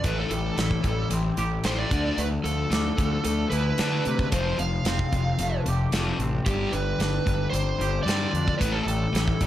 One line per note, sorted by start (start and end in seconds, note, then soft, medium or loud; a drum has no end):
0.04 0.23 A1 medium
0.04 0.28 A2 medium
0.04 1.39 A2 medium
0.04 0.29 E3 medium
0.04 0.30 A3 medium
0.04 0.18 B4 medium
0.04 kick medium
0.04 closed hi-hat medium
0.20 0.31 A4 medium
0.30 0.50 A1 medium
0.30 0.54 A2 medium
0.30 0.54 E3 medium
0.30 0.84 G3 medium
0.30 1.08 A4 medium
0.30 closed hi-hat medium
0.55 0.77 A1 medium
0.55 0.81 A2 medium
0.55 0.81 E3 medium
0.55 1.92 E4 medium
0.55 snare medium
0.55 closed hi-hat medium
0.71 kick medium
0.83 1.03 A1 medium
0.83 1.08 A2 medium
0.83 1.08 E3 medium
0.83 1.92 G3 medium
0.83 kick medium
0.83 closed hi-hat soft
1.10 1.30 A1 medium
1.10 1.35 A2 medium
1.10 1.35 E3 medium
1.10 1.64 C4 medium
1.10 closed hi-hat medium
1.37 1.57 A1 medium
1.37 1.62 A2 medium
1.37 1.62 E3 medium
1.37 1.92 G4 medium
1.37 closed hi-hat soft
1.64 1.84 A1 medium
1.64 1.89 A2 medium
1.64 1.90 E3 medium
1.64 1.90 A3 medium
1.64 1.92 C4 medium
1.64 1.78 C5 medium
1.64 snare medium
1.64 closed hi-hat medium
1.78 2.20 D5 medium
1.91 2.10 D2 medium
1.91 2.16 D3 medium
1.91 2.17 D3 medium
1.91 2.16 A3 medium
1.91 2.17 D4 medium
1.91 kick medium
1.91 closed hi-hat soft
2.18 2.37 D2 medium
2.18 2.42 D3 medium
2.18 3.52 D3 medium
2.18 2.42 A3 medium
2.18 2.26 B4 medium
2.18 closed hi-hat medium
2.44 2.64 D2 medium
2.44 2.69 D3 medium
2.44 2.97 F3 medium
2.44 2.69 A3 medium
2.44 3.24 A4 medium
2.44 closed hi-hat soft
2.70 2.90 D2 medium
2.70 2.95 D3 medium
2.70 2.95 A3 medium
2.70 4.06 D4 medium
2.70 snare medium
2.70 closed hi-hat medium
2.97 3.17 D2 medium
2.97 3.22 D3 medium
2.97 4.33 F3 medium
2.97 3.22 A3 medium
2.97 kick medium
2.97 closed hi-hat soft
3.24 3.44 D2 medium
3.24 3.49 D3 medium
3.24 3.49 A3 medium
3.24 3.78 A3 medium
3.24 3.50 A4 medium
3.24 closed hi-hat medium
3.50 3.71 D2 medium
3.50 3.75 D3 medium
3.50 3.75 A3 medium
3.50 4.33 E4 medium
3.50 4.28 B4 medium
3.50 closed hi-hat medium
3.78 4.04 D3 medium
3.78 3.99 D3 medium
3.78 4.04 A3 medium
3.78 4.33 A3 medium
3.78 4.04 D4 medium
3.78 snare medium
3.78 closed hi-hat medium
4.05 4.26 C3 medium
4.05 4.30 D3 medium
4.05 4.30 A3 medium
4.05 4.33 D4 medium
4.05 closed hi-hat soft
4.19 kick medium
4.32 4.51 F1 medium
4.32 4.57 F2 medium
4.32 4.58 C3 medium
4.32 4.58 F3 medium
4.32 4.60 F3 medium
4.32 4.57 C5 medium
4.32 kick medium
4.32 closed hi-hat medium
4.59 4.78 F1 medium
4.59 4.83 F2 medium
4.59 4.83 C3 medium
4.59 5.13 F3 medium
4.59 5.62 F5 medium
4.59 closed hi-hat medium
4.85 5.04 F1 medium
4.85 5.10 F2 medium
4.85 5.10 C3 medium
4.85 6.21 C4 medium
4.85 snare medium
4.85 closed hi-hat medium
4.99 kick medium
5.12 5.32 F1 medium
5.12 5.37 F2 medium
5.12 5.37 C3 medium
5.12 6.47 F3 medium
5.12 kick medium
5.12 closed hi-hat soft
5.39 5.58 F1 medium
5.39 5.63 F2 medium
5.39 5.63 C3 medium
5.39 5.93 A3 medium
5.39 closed hi-hat medium
5.66 5.85 F1 medium
5.66 5.90 F2 medium
5.66 5.90 C3 medium
5.66 7.81 G4 medium
5.66 closed hi-hat medium
5.92 6.12 F1 medium
5.92 6.18 F2 medium
5.92 6.18 C3 medium
5.92 6.18 F3 medium
5.92 6.47 A3 medium
5.92 snare medium
5.92 closed hi-hat medium
6.19 6.38 A1 medium
6.19 6.43 F2 soft
6.19 6.44 C3 medium
6.19 7.00 C4 medium
6.19 closed hi-hat soft
6.46 6.66 G1 medium
6.46 6.71 G2 medium
6.46 7.80 G2 medium
6.46 6.72 D3 medium
6.46 6.72 G3 medium
6.46 6.74 G4 medium
6.46 kick loud
6.46 closed hi-hat medium
6.72 6.92 G1 medium
6.72 6.97 G2 medium
6.72 6.97 D3 medium
6.72 7.26 G3 medium
6.72 7.50 B4 medium
6.72 closed hi-hat medium
6.99 7.18 G1 medium
6.99 7.24 G2 medium
6.99 7.24 D3 medium
6.99 8.33 D4 medium
6.99 snare medium
6.99 closed hi-hat medium
7.26 7.46 G1 medium
7.26 7.50 G2 medium
7.26 7.50 D3 medium
7.26 8.60 G3 medium
7.26 kick medium
7.26 closed hi-hat soft
7.50 7.72 G1 medium
7.50 7.77 G2 medium
7.50 7.77 D3 medium
7.50 8.02 C5 medium
7.50 closed hi-hat medium
7.55 8.06 C4 medium
7.79 7.99 G1 medium
7.79 8.03 G2 medium
7.79 8.04 D3 medium
7.79 8.61 G4 medium
7.79 closed hi-hat medium
8.03 8.30 G2 medium
8.03 8.25 G2 medium
8.03 8.31 D3 medium
8.03 8.32 G3 medium
8.03 8.58 D5 medium
8.07 8.60 C4 medium
8.07 snare medium
8.07 closed hi-hat medium
8.32 8.53 F2 medium
8.32 8.57 G2 medium
8.32 8.57 D3 medium
8.32 8.60 D4 medium
8.32 closed hi-hat soft
8.48 kick medium
8.59 8.80 A1 medium
8.59 8.84 A2 medium
8.59 9.47 A2 medium
8.59 8.85 E3 medium
8.59 8.85 A3 medium
8.59 8.73 B4 medium
8.59 kick medium
8.59 closed hi-hat medium
8.71 8.83 A4 medium
8.84 9.05 A1 medium
8.84 9.10 A2 medium
8.84 9.10 E3 medium
8.84 9.40 G3 medium
8.84 9.47 A4 medium
8.84 closed hi-hat medium
9.13 9.32 A1 medium
9.13 9.37 A2 medium
9.13 9.37 E3 medium
9.13 9.47 E4 medium
9.13 snare medium
9.13 closed hi-hat medium
9.28 kick medium
9.41 9.47 A1 medium
9.41 9.47 A2 medium
9.41 9.47 E3 medium
9.41 9.47 G3 medium
9.41 kick medium
9.41 closed hi-hat medium